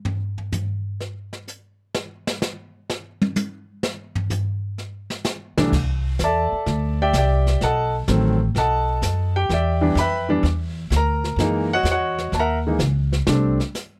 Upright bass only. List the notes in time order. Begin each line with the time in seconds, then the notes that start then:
5.57 muted upright bass stroke
5.73 C2
6.19 E2
6.52 muted upright bass stroke
6.66 D2
7.13 C2
7.61 B1
8.08 A1
8.55 B1
9.02 F#2
9.49 E2
9.95 F2
10.43 E2
10.90 D2
11.36 F#2
11.83 E2
12.32 D#2
12.79 C#2
13.27 C2